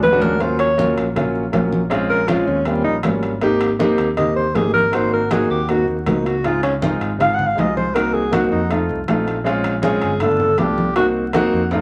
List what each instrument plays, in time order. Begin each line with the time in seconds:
0.03 fingered electric bass D#2, alto saxophone B4, high conga, low timbale
0.11 grand piano G#3 C#4 D4 F#4
0.21 alto saxophone A#4, high conga, low timbale
0.39 grand piano F#3 A#3 C#4 F4, alto saxophone C5, high conga, high timbale
0.59 alto saxophone C#5, high conga, high timbale
0.77 grand piano F#3 A#3 C#4 F4, high conga, low timbale
0.97 fingered electric bass A#1, high timbale
1.15 grand piano F#3 A#3 C#4 F4, high conga, low conga, high timbale
1.35 high conga
1.52 fingered electric bass A#1, grand piano F#3 A#3 C#4 F4, high conga, high timbale, low timbale
1.73 high conga
1.90 grand piano G#3 C4 C#4 F4, high conga, high timbale
2.10 alto saxophone A#4, high conga
2.28 grand piano G#3 C4 C#4 F4, alto saxophone F4, high conga, high timbale, low timbale
2.47 fingered electric bass D#2, alto saxophone C#4, high conga
2.65 grand piano G3 A#3 C#4 F4, alto saxophone C4, high conga, high timbale
2.85 alto saxophone D#4, high conga
3.03 fingered electric bass G#1, grand piano G3 A#3 C#4 F4, high conga, high timbale, low timbale
3.23 high conga, high timbale
3.41 grand piano A#3 C4 D#4 G4, high conga, high timbale
3.61 high conga, high timbale
3.79 grand piano A#3 C4 D#4 G4, high conga, low timbale
3.98 fingered electric bass D#2, high timbale
4.17 grand piano A#3 C4 D#4 G4, alto saxophone D#5, high conga, low conga, high timbale
4.36 alto saxophone C5, high conga
4.55 fingered electric bass G#1, grand piano A#3 C4 D#4 G4, alto saxophone G#4, high conga, high timbale, low timbale
4.74 alto saxophone A#4, high conga
4.92 grand piano A#3 C4 D#4 F#4, alto saxophone C5, high conga, high timbale
5.13 alto saxophone A#4, high conga
5.31 grand piano A#3 C4 D#4 F#4, alto saxophone G#4, high conga, high timbale, low timbale
5.50 fingered electric bass D#2, alto saxophone G4, high conga
5.69 grand piano A#3 C4 D#4 F#4, alto saxophone F#4, high conga, high timbale
5.87 fingered electric bass D#2, alto saxophone A#3, high conga
6.06 fingered electric bass C#2, grand piano A#3 C4 D#4 F#4, alto saxophone D#4, high conga, high timbale, low timbale
6.26 alto saxophone F#4, high conga, high timbale
6.44 grand piano G#3 C4 D#4 F4, alto saxophone F4, high conga, high timbale
6.63 alto saxophone C#4, high conga, high timbale
6.82 grand piano G#3 C4 D#4 F4, high conga, low timbale
7.00 fingered electric bass G#1, high timbale
7.18 grand piano G#3 C4 D#4 F4, alto saxophone F5, high conga, low conga, high timbale
7.35 alto saxophone F#5
7.39 high conga, low conga
7.47 alto saxophone F5
7.55 fingered electric bass C2, grand piano G#3 C4 D#4 F4, high conga, high timbale, low timbale
7.60 alto saxophone D#5
7.77 alto saxophone C5, high conga
7.94 grand piano A#3 C4 D#4 F#4, alto saxophone A#4, high conga, high timbale
8.14 alto saxophone G#4, high conga
8.31 grand piano A#3 C4 D#4 F#4, alto saxophone F#4, high conga, high timbale, low timbale
8.52 fingered electric bass F2, alto saxophone D#4, high conga
8.69 grand piano A3 C4 D#4 F4, high conga, high timbale
8.89 fingered electric bass C2, high conga
9.08 fingered electric bass A#1, grand piano A3 C4 D#4 F4, high conga, high timbale, low timbale
9.27 high conga, high timbale
9.44 grand piano G#3 C4 C#4 F4, high conga, high timbale
9.64 high conga, high timbale
9.82 grand piano G#3 C4 C#4 F4, alto saxophone G#4, high conga, low timbale
10.02 fingered electric bass G1, high timbale
10.20 grand piano A3 B3 D4 F4, alto saxophone A4, high conga, low conga, high timbale
10.40 high conga, low conga
10.58 fingered electric bass C2, grand piano A3 B3 D4 F4, alto saxophone G4, high conga, high timbale, low timbale
10.78 high conga
10.96 grand piano A#3 C4 D#4 F#4, alto saxophone F#4, high conga, high timbale
11.16 high conga
11.33 grand piano A#3 C4 D#4 F#4, high conga, high timbale, low timbale
11.53 fingered electric bass F2, high conga
11.71 grand piano A3 C4 D#4 F4, high conga, high timbale